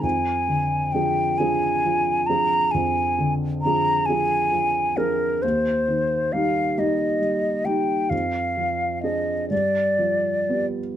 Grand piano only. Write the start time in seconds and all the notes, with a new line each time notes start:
0.03 F2
0.48 D3
0.94 F3 D4 G#4
1.40 F3 D4 G#4
1.85 F3
2.29 F3 D4 G#4
2.74 F2
3.19 D3
3.65 F3 D4 G#4
4.09 F3 D4 G#4
4.52 F3
4.98 F3 D4 G#4
5.44 D#2
5.88 D#3
6.33 G3 D#4 G4
6.78 G3 D#4 G4
7.20 G3
7.65 G3 D#4 G4
8.11 F2
8.57 F3
9.04 D4 G#4
9.51 G2
9.99 F3
10.49 B3 G4